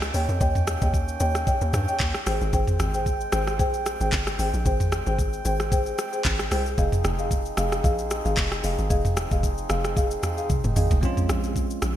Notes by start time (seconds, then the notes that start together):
Already playing: C#2 D#3 A#3 C#4 G5
0.02 cross-stick, shaker
0.14 D#2 C#5 D#5 G5, open hi-hat, shaker
0.29 F2, shaker
0.40 D#2 C#5 D#5 G5, kick, shaker
0.55 mid tom, shaker
0.67 cross-stick, shaker
0.81 D#2 C#5 D#5 G5, kick, shaker
0.94 kick, shaker
1.08 shaker
1.20 D#2 C#5 D#5 G5, shaker
1.35 cross-stick, shaker
1.47 C#5 D#5 G5, kick, shaker
1.61 D#2, shaker
1.73 G2, cross-stick, mid tom, shaker
1.88 C#5 D#5 G5, shaker
2.00 D#2, kick, clap, shaker
2.14 cross-stick, shaker
2.26 G#1 G#3 C4 G#4 C5 G5, cross-stick, open hi-hat, shaker
2.41 G#1, shaker
2.53 G#1 G#4 C5 G5, kick, shaker
2.67 mid tom, shaker
2.80 G#1, cross-stick, shaker
2.94 G#4 C5 G5, shaker
3.06 kick, shaker
3.21 shaker
3.32 G#1 G#4 C5 G5, cross-stick, shaker
3.47 cross-stick, shaker
3.59 A#1 G#4 C5 G5, kick, shaker
3.74 shaker
3.86 cross-stick, shaker
4.00 G#1 G#4 C5 G5, shaker
4.12 G1, kick, clap, shaker
4.27 cross-stick, shaker
4.39 G#1 G#4 C5 G5, open hi-hat, shaker
4.54 A#1, shaker
4.65 G#1 G#4 C5 G5, kick, shaker
4.80 mid tom, shaker
4.92 cross-stick, shaker
5.06 G#1 G#4 C5 G5, shaker
5.19 kick, shaker
5.33 shaker
5.45 G#1 G#4 C5 G5, shaker
5.60 cross-stick, shaker
5.71 G#4 C5 G5, kick, shaker
5.86 shaker
5.98 cross-stick, shaker
6.13 G#4 C5 G5, shaker
6.25 G#1, kick, clap, shaker
6.39 cross-stick, shaker
6.51 C2 G#4 C5 G5, cross-stick, open hi-hat, shaker
6.66 shaker
6.78 F1 F3 D#4 G#4 D#5 F5, kick, shaker
6.92 mid tom, shaker
7.04 F1, cross-stick, shaker
7.19 G#4 D#5 F5, shaker
7.31 kick, shaker
7.45 shaker
7.57 F1 G#4 D#5 F5, cross-stick, shaker
7.72 cross-stick, shaker
7.84 A#1 G#4 D#5 F5, kick, shaker
7.99 shaker
8.11 cross-stick, shaker
8.25 G#1 G#4 D#5 F5, shaker
8.37 F1, kick, clap, shaker
8.52 cross-stick, shaker
8.63 F1 G#4 D#5 F5, open hi-hat, shaker
8.78 G#1, shaker
8.90 F1 G#4 D#5 F5, kick, shaker
9.05 mid tom, shaker
9.17 cross-stick, shaker
9.31 F1 G#4 D#5 F5, kick, shaker
9.43 kick, shaker
9.58 shaker
9.69 F1 G#4 D#5 F5, cross-stick, shaker
9.84 cross-stick, shaker
9.96 G#4 D#5 F5, kick, shaker
10.11 shaker
10.23 cross-stick, mid tom, shaker
10.37 G#4 D#5 F5, shaker
10.50 kick, high tom, shaker
10.64 F1, mid tom, shaker
10.76 G#1 G#4 D#5 F5, mid tom, open hi-hat, shaker
10.91 F1, floor tom, shaker
11.01 A#1 G#3 C4 C#4 F4, kick, shaker
11.17 mid tom, shaker
11.29 A#1, cross-stick, shaker
11.44 shaker
11.56 kick, shaker
11.70 shaker
11.82 A#1, cross-stick, shaker